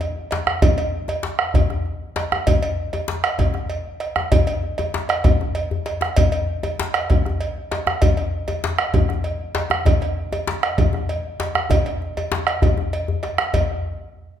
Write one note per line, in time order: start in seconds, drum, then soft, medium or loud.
0.01 cowbell soft
0.01 djembe slap soft
0.31 bombo rim soft
0.31 cowbell medium
0.31 djembe slap medium
0.47 bombo rim medium
0.47 djembe tone medium
0.62 bombo low loud
0.62 cowbell medium
0.62 djembe slap soft
0.62 djembe bass medium
0.78 cowbell medium
0.78 djembe slap soft
1.08 cowbell medium
1.08 djembe tone medium
1.23 djembe slap medium
1.39 bombo rim medium
1.39 djembe slap soft
1.54 bombo low loud
1.54 cowbell medium
1.54 djembe slap soft
1.54 djembe bass medium
1.70 bombo rim soft
1.70 djembe tone medium
1.86 djembe slap soft
2.16 bombo rim soft
2.16 cowbell medium
2.16 djembe slap medium
2.32 bombo rim medium
2.32 djembe tone medium
2.47 bombo low loud
2.47 cowbell medium
2.47 djembe slap soft
2.47 djembe bass medium
2.62 cowbell medium
2.62 djembe slap soft
2.93 cowbell medium
2.93 djembe tone medium
3.08 djembe slap medium
3.24 bombo rim medium
3.24 cowbell soft
3.24 djembe slap soft
3.39 bombo low medium
3.39 cowbell medium
3.39 djembe slap soft
3.39 djembe bass medium
3.54 bombo rim soft
3.54 djembe tone medium
3.70 cowbell soft
3.70 djembe slap soft
4.00 bombo rim soft
4.00 cowbell medium
4.16 bombo rim medium
4.16 djembe tone medium
4.32 bombo low loud
4.32 cowbell medium
4.32 djembe slap soft
4.32 djembe bass medium
4.47 cowbell medium
4.47 djembe slap soft
4.63 djembe slap soft
4.78 cowbell medium
4.78 djembe slap soft
4.78 djembe tone medium
4.94 djembe slap medium
5.09 bombo rim medium
5.09 cowbell medium
5.24 bombo rim soft
5.24 bombo low loud
5.24 cowbell medium
5.24 djembe slap soft
5.24 djembe bass medium
5.41 djembe tone medium
5.55 cowbell medium
5.55 djembe slap soft
5.71 djembe bass medium
5.86 cowbell medium
5.86 djembe slap medium
6.01 bombo rim medium
6.01 djembe slap medium
6.16 bombo low medium
6.16 cowbell medium
6.16 djembe slap soft
6.16 djembe bass medium
6.32 cowbell medium
6.32 djembe slap soft
6.63 cowbell medium
6.63 djembe tone medium
6.80 djembe slap loud
6.94 bombo rim medium
6.94 cowbell medium
6.94 djembe slap soft
7.10 bombo low loud
7.10 cowbell medium
7.10 djembe slap soft
7.10 djembe bass medium
7.26 bombo rim soft
7.26 djembe tone medium
7.41 cowbell soft
7.41 djembe slap soft
7.71 bombo rim soft
7.71 cowbell soft
7.71 djembe slap medium
7.87 bombo rim medium
7.87 djembe tone medium
8.02 bombo low loud
8.02 cowbell medium
8.02 djembe slap soft
8.02 djembe bass medium
8.17 cowbell soft
8.48 cowbell soft
8.48 djembe tone medium
8.64 djembe slap medium
8.78 bombo rim loud
8.78 cowbell soft
8.78 djembe slap soft
8.94 bombo low loud
8.94 cowbell medium
8.94 djembe slap soft
8.94 djembe bass medium
9.09 bombo rim soft
9.09 djembe tone medium
9.24 cowbell soft
9.24 djembe slap soft
9.55 bombo rim soft
9.55 cowbell medium
9.55 djembe slap loud
9.70 bombo rim medium
9.70 djembe tone medium
9.86 bombo low loud
9.86 cowbell medium
9.86 djembe slap soft
9.86 djembe bass medium
10.01 cowbell medium
10.01 djembe slap soft
10.32 cowbell medium
10.32 djembe tone medium
10.47 djembe slap medium
10.63 bombo rim medium
10.63 cowbell medium
10.63 djembe slap soft
10.78 bombo low loud
10.78 cowbell medium
10.78 djembe slap soft
10.78 djembe bass medium
10.93 bombo rim soft
10.93 djembe tone medium
11.09 cowbell soft
11.09 djembe slap soft
11.40 bombo rim soft
11.40 cowbell soft
11.40 djembe slap loud
11.55 bombo rim medium
11.55 djembe tone medium
11.70 bombo rim soft
11.70 bombo low loud
11.70 cowbell medium
11.70 djembe bass medium
11.86 cowbell soft
12.02 djembe slap soft
12.17 cowbell medium
12.17 djembe tone medium
12.32 djembe slap loud
12.47 bombo rim medium
12.47 cowbell medium
12.62 bombo low loud
12.62 cowbell medium
12.62 djembe bass medium
12.77 djembe tone medium
12.93 cowbell medium
12.93 djembe slap soft
13.08 djembe bass medium
13.23 bombo rim soft
13.23 cowbell medium
13.23 djembe slap medium
13.38 bombo rim medium
13.38 djembe slap medium
13.54 bombo low medium
13.54 cowbell medium
13.54 djembe bass medium